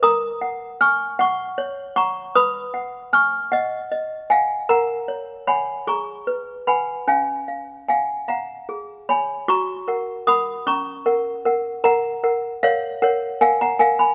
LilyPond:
\new Staff \with { instrumentName = "Toy piano" } { \time 6/8 \key fis \major \tempo 4. = 51 << { <ais'' dis'''>4 <cis''' eis'''>8 <fis'' cis'''>4 <ais'' cis'''>8 | <b'' dis'''>4 <cis''' eis'''>8 <dis'' fis''>4 <eis'' gis''>8 | <fis'' ais''>4 <gis'' b''>8 <ais'' cis'''>4 <gis'' b''>8 | <eis'' gis''>4 <eis'' gis''>8 <fis'' ais''>4 <gis'' b''>8 |
<ais'' cis'''>4 <b'' dis'''>8 <ais'' cis'''>4. | <fis'' ais''>4 <cis'' eis''>8 <cis'' fis''>8 <eis'' gis''>16 <fis'' ais''>16 <eis'' gis''>16 <gis'' b''>16 | } \\ { ais'8 fis''8 gis''8 r8 cis''8 fis''8 | b'8 fis''8 gis''8 r8 dis''8 fis''8 | ais'8 cis''8 <cis'' fis''>8 gis'8 b'8 <b' fis''>8 | cis'8 eis''8 fis''8 eis''8 gis'8 cis''8 |
fis'8 <ais' fis''>8 <ais' fis''>8 cis'8 <ais' fis''>8 <ais' fis''>8 | ais'8 <ais' fis''>8 <ais' fis''>8 ais'8 <ais' fis''>8 <ais' fis''>8 | } >> }